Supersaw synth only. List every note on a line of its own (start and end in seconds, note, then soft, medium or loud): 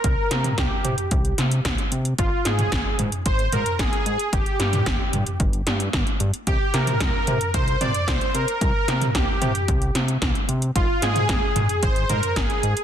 0.04 0.59 A#4 loud
0.58 1.34 G4 medium
2.18 2.46 F4 loud
2.45 2.95 G#4 loud
3.26 3.53 C5 loud
3.53 3.80 A#4 loud
3.79 4.05 G#4 loud
4.06 4.31 G#4 medium
4.32 5.36 G4 medium
6.47 6.75 G4 medium
6.74 7.56 A#4 loud
7.54 7.79 C5 loud
7.81 8.08 D5 loud
8.08 8.33 C5 loud
8.34 8.59 A#4 medium
8.61 9.11 A#4 loud
9.15 9.91 G4 medium
10.76 11.03 F4 loud
11.02 11.85 G#4 loud
11.82 12.10 C5 loud
12.09 12.34 A#4 loud
12.36 12.84 G#4 loud